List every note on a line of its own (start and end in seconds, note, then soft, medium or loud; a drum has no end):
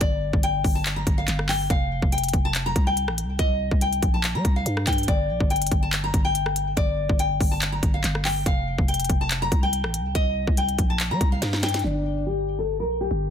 0.01 0.32 G1 loud
0.01 0.41 D5 loud
0.01 kick loud
0.01 closed hi-hat medium
0.33 0.63 G1 loud
0.33 kick loud
0.43 0.74 G5 medium
0.43 closed hi-hat medium
0.64 1.05 G1 loud
0.64 kick medium
0.64 open hi-hat medium
0.75 0.95 A5 medium
0.86 clap loud
0.86 closed hi-hat medium
0.96 1.16 A#5 medium
1.07 1.27 G1 loud
1.07 kick loud
1.07 closed hi-hat medium
1.18 1.47 F5 medium
1.28 1.68 G1 loud
1.28 clap medium
1.28 closed hi-hat medium
1.39 cross-stick loud
1.49 1.68 G5 medium
1.49 clap loud
1.49 open hi-hat medium
1.70 2.01 F1 loud
1.70 2.10 F5 loud
1.70 kick loud
1.70 closed hi-hat medium
2.02 2.32 F1 loud
2.02 kick loud
2.12 2.43 G5 medium
2.12 closed hi-hat medium
2.18 closed hi-hat medium
2.24 closed hi-hat medium
2.29 closed hi-hat medium
2.33 2.74 F1 loud
2.33 kick loud
2.33 closed hi-hat medium
2.45 2.64 A5 medium
2.55 clap loud
2.55 closed hi-hat medium
2.66 2.85 A#5 loud
2.76 3.10 C2 loud
2.76 kick loud
2.76 closed hi-hat medium
2.87 3.36 G5 medium
2.97 closed hi-hat medium
3.08 3.25 A1 loud
3.08 cross-stick loud
3.18 closed hi-hat medium
3.24 3.38 C2 loud
3.39 3.70 C2 loud
3.39 3.79 D#5 loud
3.39 kick loud
3.39 closed hi-hat medium
3.71 4.01 C2 loud
3.71 kick loud
3.81 4.12 G5 medium
3.81 closed hi-hat medium
3.93 closed hi-hat medium
4.03 4.36 A#1 loud
4.03 kick loud
4.03 closed hi-hat medium
4.14 4.33 A5 medium
4.24 clap loud
4.24 closed hi-hat medium
4.35 4.44 G3 loud
4.35 4.54 A#5 medium
4.45 4.65 C2 loud
4.45 kick loud
4.45 closed hi-hat medium
4.56 4.85 F5 medium
4.66 4.86 G2 loud
4.66 closed hi-hat medium
4.77 cross-stick loud
4.87 5.07 G2 loud
4.87 5.06 G5 medium
4.87 kick loud
4.87 clap loud
4.87 closed hi-hat medium
4.93 closed hi-hat medium
4.98 closed hi-hat medium
5.03 closed hi-hat medium
5.08 5.31 G1 loud
5.08 5.48 D5 loud
5.08 kick loud
5.08 closed hi-hat medium
5.29 5.40 A#1 loud
5.40 5.70 G1 loud
5.40 kick loud
5.50 5.81 G5 medium
5.50 closed hi-hat medium
5.56 closed hi-hat medium
5.62 closed hi-hat medium
5.67 closed hi-hat medium
5.72 6.12 G1 loud
5.72 kick loud
5.72 closed hi-hat medium
5.83 6.02 A5 medium
5.93 clap loud
5.93 closed hi-hat medium
6.04 6.23 A#5 medium
6.14 6.75 G1 loud
6.14 kick loud
6.14 closed hi-hat medium
6.25 6.74 G5 medium
6.35 closed hi-hat medium
6.46 cross-stick loud
6.56 closed hi-hat medium
6.77 7.08 G1 loud
6.77 7.17 D5 loud
6.77 kick loud
6.77 closed hi-hat medium
7.09 7.39 G1 loud
7.09 kick loud
7.19 7.50 G5 medium
7.19 closed hi-hat medium
7.41 7.81 G1 loud
7.41 kick loud
7.41 open hi-hat medium
7.51 7.71 A5 medium
7.62 clap loud
7.62 closed hi-hat medium
7.72 7.92 A#5 medium
7.83 8.03 G1 loud
7.83 kick loud
7.83 closed hi-hat medium
7.94 8.23 F5 medium
8.04 8.44 G1 loud
8.04 clap medium
8.04 closed hi-hat medium
8.15 cross-stick loud
8.25 8.44 G5 medium
8.25 clap loud
8.25 open hi-hat medium
8.46 8.77 F1 loud
8.46 8.86 F5 loud
8.46 kick loud
8.46 closed hi-hat medium
8.78 9.08 F1 loud
8.78 kick loud
8.88 9.19 G5 medium
8.88 closed hi-hat medium
8.94 closed hi-hat medium
9.00 closed hi-hat medium
9.05 closed hi-hat medium
9.10 9.50 F1 loud
9.10 kick loud
9.10 closed hi-hat medium
9.21 9.40 A5 medium
9.31 clap loud
9.31 closed hi-hat medium
9.42 9.61 A#5 loud
9.52 9.86 C2 loud
9.52 kick loud
9.52 closed hi-hat medium
9.63 10.12 G5 medium
9.73 closed hi-hat medium
9.84 10.01 A1 loud
9.84 cross-stick loud
9.94 closed hi-hat medium
10.00 10.14 C2 loud
10.15 10.46 C2 loud
10.15 10.55 D#5 loud
10.15 kick loud
10.15 closed hi-hat medium
10.47 10.77 C2 loud
10.47 kick loud
10.57 10.88 G5 medium
10.57 closed hi-hat medium
10.69 closed hi-hat medium
10.79 11.12 A#1 loud
10.79 kick loud
10.79 closed hi-hat medium
10.90 11.09 A5 medium
11.00 clap loud
11.00 closed hi-hat medium
11.11 11.20 G3 loud
11.11 11.30 A#5 medium
11.21 11.41 C2 loud
11.21 kick loud
11.21 closed hi-hat medium
11.32 11.61 F5 medium
11.42 11.82 G2 loud
11.42 snare medium
11.42 closed hi-hat medium
11.53 snare medium
11.63 11.82 G5 medium
11.63 snare loud
11.63 closed hi-hat medium
11.69 closed hi-hat medium
11.74 snare loud
11.74 closed hi-hat medium
11.79 closed hi-hat medium
11.84 12.81 G1 loud
11.84 12.24 D4 medium
12.26 12.57 G4 medium
12.59 12.78 A4 medium
12.80 13.09 A#1 loud
12.80 12.99 A#4 medium
13.01 13.30 G4 medium
13.11 13.30 G1 loud